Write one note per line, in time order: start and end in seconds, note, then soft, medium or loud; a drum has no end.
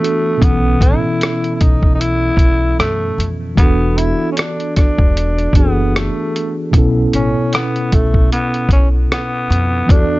0.00 0.40 E3 medium
0.00 0.45 A3 loud
0.00 0.38 B3 soft
0.00 0.41 D4 soft
0.00 0.42 F#4 soft
0.00 0.42 A4 soft
0.04 closed hi-hat medium
0.37 3.51 B2 medium
0.37 3.52 B3 medium
0.37 3.53 C#4 medium
0.42 0.76 B1 loud
0.42 3.54 E3 medium
0.42 0.84 B3 medium
0.42 3.55 A4 medium
0.42 kick loud
0.42 closed hi-hat medium
0.81 1.01 A1 medium
0.81 1.55 E4 medium
0.81 kick medium
0.81 closed hi-hat medium
1.21 cross-stick loud
1.21 closed hi-hat medium
1.44 closed hi-hat soft
1.55 1.63 E4 medium
1.61 2.29 B1 medium
1.61 1.94 D#4 medium
1.61 kick medium
1.61 closed hi-hat medium
1.83 kick medium
1.95 2.01 D#4 medium
2.00 2.79 E4 loud
2.00 closed hi-hat medium
2.37 2.72 B1 medium
2.37 kick medium
2.37 closed hi-hat medium
2.79 3.13 F#2 medium
2.79 3.29 A3 medium
2.79 cross-stick medium
2.79 closed hi-hat medium
3.18 3.52 F2 medium
3.18 closed hi-hat medium
3.55 4.11 E1 medium
3.55 5.50 E3 medium
3.55 5.51 B3 medium
3.55 3.99 B3 medium
3.55 5.51 D4 medium
3.55 kick loud
3.55 closed hi-hat medium
3.61 5.52 F#4 medium
3.61 5.53 A4 medium
3.97 4.31 E4 medium
3.97 closed hi-hat medium
4.32 4.39 C#4 medium
4.37 4.76 D4 medium
4.37 cross-stick loud
4.37 closed hi-hat medium
4.60 closed hi-hat soft
4.76 5.58 D4 medium
4.76 kick medium
4.76 cross-stick soft
4.76 closed hi-hat medium
4.98 5.47 E1 medium
4.98 kick medium
5.17 closed hi-hat medium
5.38 closed hi-hat soft
5.53 6.08 F#1 medium
5.53 6.73 E3 medium
5.53 6.72 B3 soft
5.53 5.97 B3 medium
5.53 6.74 D4 soft
5.53 kick medium
5.53 closed hi-hat medium
5.57 6.74 F#4 soft
5.57 5.64 G#4 soft
5.65 6.77 A4 medium
5.96 6.57 A3 medium
5.96 cross-stick medium
5.96 closed hi-hat medium
6.36 closed hi-hat medium
6.71 7.07 B1 loud
6.71 9.84 B2 medium
6.71 9.85 B3 medium
6.71 9.86 C#4 medium
6.71 kick loud
6.71 closed hi-hat medium
6.77 9.87 E4 medium
6.77 9.87 A4 medium
7.13 7.33 A1 medium
7.13 7.55 C#4 medium
7.13 closed hi-hat medium
7.53 7.96 B3 medium
7.53 cross-stick loud
7.53 closed hi-hat medium
7.76 closed hi-hat soft
7.92 8.27 B1 medium
7.92 8.31 A3 medium
7.92 kick medium
7.92 closed hi-hat medium
8.14 kick medium
8.32 8.68 B3 loud
8.32 closed hi-hat medium
8.54 closed hi-hat soft
8.69 9.04 B1 medium
8.69 8.88 C#4 medium
8.69 kick medium
8.69 closed hi-hat medium
9.12 9.92 B3 medium
9.12 cross-stick medium
9.12 closed hi-hat medium
9.50 9.84 F2 loud
9.50 closed hi-hat medium
9.86 10.20 E2 loud
9.86 10.20 E3 medium
9.86 10.20 B3 medium
9.86 10.20 D4 medium
9.86 kick loud
9.90 10.20 D4 loud
9.90 10.20 F#4 medium
9.90 10.20 A4 medium
9.90 closed hi-hat medium